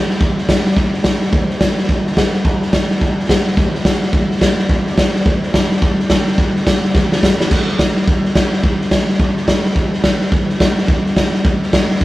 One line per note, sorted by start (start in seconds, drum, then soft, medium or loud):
0.10 snare soft
0.16 snare soft
0.21 kick loud
0.21 snare soft
0.38 snare soft
0.49 kick medium
0.49 snare loud
0.49 hi-hat pedal medium
0.66 snare soft
0.71 snare soft
0.76 kick loud
0.76 snare soft
0.94 snare soft
1.04 kick medium
1.04 snare loud
1.04 hi-hat pedal medium
1.22 snare soft
1.27 snare soft
1.33 kick loud
1.33 snare soft
1.50 snare soft
1.61 kick medium
1.61 snare loud
1.61 hi-hat pedal medium
1.78 snare soft
1.83 snare soft
1.89 kick loud
1.89 snare soft
2.07 snare soft
2.12 snare soft
2.17 kick medium
2.17 snare loud
2.17 hi-hat pedal medium
2.34 snare soft
2.45 kick loud
2.45 snare soft
2.62 snare soft
2.73 kick medium
2.73 snare loud
2.73 hi-hat pedal medium
2.91 snare soft
2.96 snare soft
3.01 kick loud
3.01 snare soft
3.19 snare soft
3.25 snare soft
3.29 kick medium
3.29 snare loud
3.29 hi-hat pedal medium
3.47 snare soft
3.52 snare soft
3.57 kick loud
3.57 snare soft
3.75 snare soft
3.85 kick medium
3.85 snare loud
3.85 hi-hat pedal medium
4.03 snare soft
4.08 snare soft
4.13 kick loud
4.13 snare soft
4.31 snare soft
4.36 snare soft
4.41 kick medium
4.41 snare loud
4.41 hi-hat pedal medium
4.59 snare soft
4.69 kick loud
4.69 snare soft
4.87 snare soft
4.98 kick medium
4.98 snare loud
4.98 hi-hat pedal medium
5.15 snare soft
5.21 snare soft
5.26 kick loud
5.26 snare soft
5.43 snare soft
5.54 kick medium
5.54 snare loud
5.54 hi-hat pedal medium
5.71 snare soft
5.77 snare soft
5.82 kick loud
5.82 snare soft
6.00 snare soft
6.10 kick medium
6.10 snare loud
6.10 hi-hat pedal medium
6.27 snare soft
6.32 snare soft
6.38 kick loud
6.38 snare soft
6.56 snare soft
6.67 kick medium
6.67 snare loud
6.67 hi-hat pedal medium
6.84 snare soft
6.90 snare soft
6.94 kick loud
6.94 snare medium
7.12 snare medium
7.23 kick medium
7.23 snare loud
7.23 hi-hat pedal medium
7.41 snare medium
7.51 kick loud
7.51 snare soft
7.51 crash loud
7.69 snare soft
7.79 kick medium
7.79 snare loud
7.79 hi-hat pedal medium
7.97 snare soft
8.02 snare soft
8.08 kick loud
8.08 snare soft
8.25 snare soft
8.35 kick loud
8.35 snare loud
8.35 hi-hat pedal medium
8.53 snare soft
8.58 snare soft
8.63 kick loud
8.63 snare soft
8.81 snare soft
8.91 kick medium
8.91 snare loud
8.91 hi-hat pedal medium
9.09 snare soft
9.14 snare soft
9.19 kick loud
9.19 snare soft
9.37 snare soft
9.48 kick medium
9.48 snare loud
9.48 hi-hat pedal loud
9.65 snare soft
9.71 snare soft
9.76 kick loud
9.76 snare soft
9.93 snare soft
10.04 kick medium
10.04 snare loud
10.04 hi-hat pedal medium
10.21 snare soft
10.27 snare soft
10.32 kick loud
10.32 snare soft
10.49 snare soft
10.60 kick medium
10.60 snare loud
10.60 hi-hat pedal loud
10.78 snare soft
10.83 snare soft
10.88 kick loud
10.88 snare soft
11.06 snare soft
11.17 kick medium
11.17 snare loud
11.17 hi-hat pedal medium
11.34 snare soft
11.45 kick loud
11.45 snare soft
11.63 snare soft
11.73 kick loud
11.73 snare loud
11.73 hi-hat pedal medium
11.91 snare soft
11.96 snare soft
12.01 kick loud
12.01 snare soft